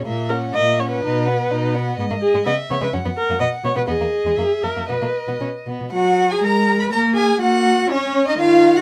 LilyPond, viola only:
\new Staff \with { instrumentName = "Viola" } { \time 2/4 \key b \major \tempo 4 = 123 r8 ais'8 dis''8 cis''16 b'16~ | b'4. r8 | r8 gis'8 dis''8 cis''16 b'16 | r8 ais'8 dis''8 cis''16 b'16 |
gis'4. ais'8 | b'4 r4 | \key fis \major fis4 gis4 | ais4 ais4 |
cis'4 dis4 | }